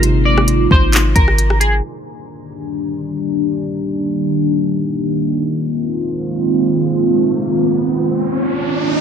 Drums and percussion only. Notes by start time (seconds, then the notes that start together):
0.03 closed hi-hat
0.38 cross-stick
0.48 closed hi-hat
0.71 kick
0.93 clap, closed hi-hat
1.16 kick, closed hi-hat
1.28 cross-stick
1.38 closed hi-hat
1.50 cross-stick
1.61 closed hi-hat